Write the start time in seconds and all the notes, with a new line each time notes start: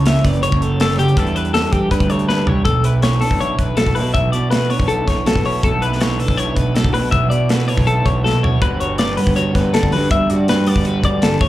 Already playing: C#2 C#3 E4
0.06 C#4 C#5 E5, snare, closed hi-hat
0.16 closed hi-hat
0.24 F#1 B4 D5, kick, snare, closed hi-hat
0.34 closed hi-hat
0.43 C#3 C#5, closed hi-hat
0.52 F#1, kick
0.62 A4 C#5, closed hi-hat
0.80 A4 C#5, snare, closed hi-hat
0.90 snare, closed hi-hat
0.99 C#3 G4, closed hi-hat
1.08 closed hi-hat
1.17 E2 E3 G3 D4 G4 A4 B4, kick, closed hi-hat
1.26 closed hi-hat
1.36 A4 B4, closed hi-hat
1.45 closed hi-hat
1.54 A4, snare, closed hi-hat
1.64 closed hi-hat
1.72 E3 G3 G4, kick, closed hi-hat
1.91 G2 B4, kick, closed hi-hat
2.00 D2, kick, closed hi-hat
2.10 A4 C#5, closed hi-hat
2.19 closed hi-hat
2.29 B4, snare
2.46 C2 G3 E4 C#5, floor tom
2.65 B1 B2 A4, kick, closed hi-hat
2.84 E4 B4, closed hi-hat
3.02 A4 C#5, snare, closed hi-hat
3.21 B3 D4 A4, open hi-hat
3.31 B1, kick
3.41 E4 C#5, closed hi-hat
3.59 B1 B4, kick, closed hi-hat
3.77 F#3 A4, snare, closed hi-hat
3.86 B1, kick, snare
3.95 B2 E4 B4, open hi-hat
4.14 B1 B2 E5, kick, closed hi-hat
4.32 B2 E4 D5, closed hi-hat
4.51 A4 B4, snare, closed hi-hat
4.70 B3 D4 C#5, open hi-hat
4.80 B1, kick
4.88 E4 A4, closed hi-hat
5.07 B1 C#5, kick, snare, closed hi-hat
5.26 F#3 A4, snare, closed hi-hat
5.36 B2, kick
5.45 E4 C#5, open hi-hat
5.63 B1 B2 A4, kick, closed hi-hat
5.82 E4 B4, closed hi-hat
5.93 snare
6.00 A4 C#5, snare, closed hi-hat
6.19 B3 D4 A4, open hi-hat
6.28 B1, kick
6.37 E4 C#5, closed hi-hat
6.56 B1 B4, kick, closed hi-hat
6.75 F#3 A4, snare, closed hi-hat
6.84 B1, kick
6.93 B2 D4 B4, open hi-hat
7.02 E4
7.11 B1 B2 E5, kick, closed hi-hat
7.30 B2 E4 D5, closed hi-hat
7.49 A4 B4, snare, closed hi-hat
7.67 B3 C#5, open hi-hat
7.77 B1 D4, kick
7.87 E4 A4, closed hi-hat
8.06 B1 C#5, kick, closed hi-hat
8.24 F#3 A4, snare
8.34 B2
8.43 E4 C#5, floor tom
8.61 G1 G2 G3 B3 F#4 B4, kick, closed hi-hat
8.65 B4
8.80 F#4 C#5, closed hi-hat
8.98 B4 D5, snare, closed hi-hat
9.17 G3 B3 B4, open hi-hat
9.27 G1, kick
9.36 F#4 C#5, closed hi-hat
9.55 G1 B4, kick, snare, closed hi-hat
9.74 D3 A4 D5, snare, closed hi-hat
9.83 G1, kick
9.92 G2 F#4 B4, open hi-hat
10.11 G1 G2 E5, kick, closed hi-hat
10.30 G2 F#4 D5, closed hi-hat
10.48 B4, snare, closed hi-hat
10.66 G3 B3 D5, open hi-hat
10.76 G1, kick
10.85 F#4 B4, closed hi-hat
11.03 G1 D5, kick, closed hi-hat
11.22 D3 A4 D5, snare, closed hi-hat
11.32 G1
11.41 A1 A2 C#5, kick, open hi-hat